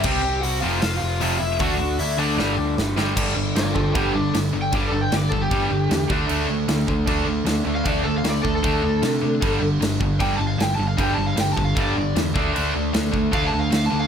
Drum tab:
CC |x-------|--------|x-x-x-x-|x-x-x-x-|
HH |--o-o-o-|o-o-----|--------|--------|
SD |----o---|----o-oo|--o---o-|--o---o-|
BD |o-------|o-------|o--oo---|o--oo--o|

CC |x-x-x-x-|x-x-x-x-|x-x-x-x-|x-x-x-x-|
HH |--------|--------|--------|--------|
SD |--o---o-|--o---o-|--o---o-|--o---o-|
BD |---oo---|o--oo---|o--oo---|o--oo--o|

CC |x-x-x-x-|
HH |--------|
SD |--o---o-|
BD |---oo---|